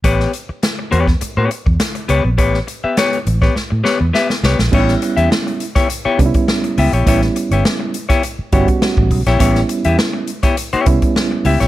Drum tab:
CC |----------------|----------------|x---------------|----------------|
HH |x-x-x-x-x-x-xxx-|x-x-xxx---------|-xxx-xxxx-xx-xox|xxxx--xxx-xx--ox|
SD |-o--o--o----o---|-o--o--oo-o-oooo|-o--o--o----o---|-o--o--o----o--o|
BD |o------o---o----|o------o--------|o------o--oo----|o------o--oo-oo-|

CC |----------------|
HH |xxxx--xxxxxx--ox|
SD |-o--o--o----o--o|
BD |o------o--oo----|